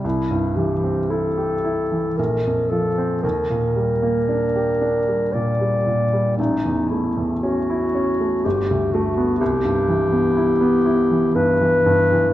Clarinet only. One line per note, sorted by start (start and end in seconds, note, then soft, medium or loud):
0.04 0.57 E4 soft
0.56 1.12 G4 soft
1.10 2.19 A4 soft
2.17 2.71 A#4 soft
2.70 3.22 A4 soft
3.23 5.34 A#4 soft
5.33 6.36 D5 medium
6.37 6.90 D#4 soft
6.89 7.23 E4 soft
7.41 8.46 F#4 medium
8.45 8.95 G4 soft
8.93 9.39 F#4 medium
9.39 11.37 G4 medium
11.36 12.34 B4 medium